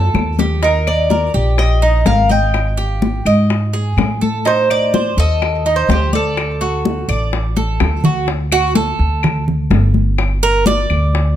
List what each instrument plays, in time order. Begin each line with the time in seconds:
Already playing: upright bass F#2, cuban tres A4
0.14 upright bass D#2, high bongo, high conga, claves
0.39 cuban tres G4, low bongo, high conga
0.63 cuban tres D#4 A#4, high bongo, high conga
0.87 cuban tres D5, high conga, claves
1.10 cuban tres A#4, high bongo, high conga
1.34 upright bass A#1, cuban tres G4
1.58 cuban tres D#5, high bongo, high conga, claves
1.82 cuban tres D#4, high conga
2.05 upright bass G#1, cuban tres A#4 F5, high bongo, low bongo, high conga
2.30 cuban tres D#5 G5, high conga
2.54 high bongo, high conga, claves
2.77 cuban tres G4, high bongo, high conga
3.02 high bongo, high conga
3.25 upright bass G#2, cuban tres D#5, high bongo, high conga, claves
3.50 high bongo, high conga
3.73 cuban tres G#4, high bongo, high conga
3.97 upright bass A2, high bongo, low bongo, high conga, claves
4.21 cuban tres A4, high conga
4.45 cuban tres D#4 C5, high bongo, high conga
4.70 cuban tres D5, high conga, claves
4.94 cuban tres C5, high bongo, high conga
5.17 upright bass D#2, cuban tres A4 D#5
5.42 high bongo, high conga, claves
5.65 cuban tres D#4, high conga
5.76 cuban tres C5
5.89 upright bass D2, cuban tres G4 C5, high bongo, low bongo, high conga
6.13 cuban tres A4 D5, high conga
6.37 high bongo, high conga, claves
6.61 cuban tres F#4, high bongo, high conga
6.85 high bongo, high conga
7.08 upright bass A1, cuban tres D5, high bongo, high conga, claves
7.33 high bongo, high conga
7.57 cuban tres A4, high bongo, high conga
7.80 upright bass D2, high bongo, low bongo, claves
8.04 cuban tres F#4, low conga
8.27 high bongo, high conga
8.51 cuban tres F#4, high conga, claves
8.75 cuban tres A4, high bongo, high conga
8.99 upright bass D2
9.23 high bongo, high conga, low conga, claves
9.48 high conga, low conga
9.70 upright bass G1, high bongo, low bongo, high conga
9.94 high conga
10.18 high bongo, high conga, claves
10.43 cuban tres A#4, high bongo, high conga
10.66 cuban tres D5, high bongo, high conga
10.90 upright bass D2, high bongo, high conga, claves
11.13 high bongo, high conga